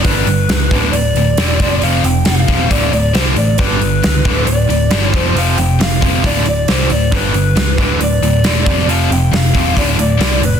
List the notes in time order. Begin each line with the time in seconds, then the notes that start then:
0.04 G1 G2 D3 G3 B4, kick, open hi-hat
0.27 G1 G2 D3, open hi-hat
0.49 C#2 G2 D3, snare, open hi-hat
0.71 D1 D2 A2 D3, kick, open hi-hat
0.92 D1 D2 A2 D5, open hi-hat
1.15 D1 D2 A2, open hi-hat
1.37 E1 D2 A2 D3, snare, open hi-hat
1.60 F1 F2 C3 F3, kick, open hi-hat
1.82 F1 F2 C3 F3 F5, open hi-hat
2.03 F1 F2 C3 G5, open hi-hat
2.25 F1 F2 C3 F5, snare, open hi-hat
2.47 E1 F2 C3 F3, kick, open hi-hat
2.69 D1 D2 A2 D3 D5, kick, open hi-hat
2.92 D1 D2 A2 D5, open hi-hat
3.13 C2 D2 A2 D3 C5, snare, open hi-hat
3.36 A1 D2 A2 D5, open hi-hat
3.58 G1 G2 D3 G3 B4, kick, open hi-hat
3.81 G1 G2 D3, open hi-hat
4.02 C#2 G2 D3, snare, open hi-hat
4.25 D1 D2 A2 D3, kick, open hi-hat
4.47 D1 D2 A2 D5, open hi-hat
4.69 D1 D2 A2, open hi-hat
4.91 G1 D2 A2 D3, snare, open hi-hat
5.13 F1 F2 C3 F3 C5, kick, open hi-hat
5.35 F1 F2 C3 F3 F5, open hi-hat
5.58 F1 F2 C3 G5, open hi-hat
5.79 F1 F2 C3 F5, snare, open hi-hat
6.01 F1 F2 C3 F3, kick, open hi-hat
6.23 D1 D2 A2 D3 D5, kick, open hi-hat
6.45 D1 D2 A2 D5, open hi-hat
6.68 C2 D2 A2 D3 C5, snare, open hi-hat
6.90 D1 D2 A2 D5, open hi-hat
7.12 G1 G2 D3 G3 B4, kick, open hi-hat
7.34 G1 G2 D3, open hi-hat
7.56 C#2 G2 D3, snare, open hi-hat
7.78 D1 D2 A2 D3, kick, open hi-hat
8.00 D1 D2 A2 D5, open hi-hat
8.21 D1 D2 A2, open hi-hat
8.44 E1 D2 A2 D3, snare, open hi-hat
8.66 F1 F2 C3 F3, kick, open hi-hat
8.79 snare
8.88 F1 F2 C3 F3 F5, open hi-hat
9.11 F1 F2 C3 G5, open hi-hat
9.32 F1 F2 C3 F5, snare, open hi-hat
9.53 E1 F2 C3 F3, kick, open hi-hat
9.75 D1 D2 A2 D3 D5, kick, open hi-hat
9.97 D1 D2 A2 D5, open hi-hat
10.17 C2 D2 A2 D3, snare, open hi-hat
10.40 F1 D2 A2, open hi-hat
10.45 B4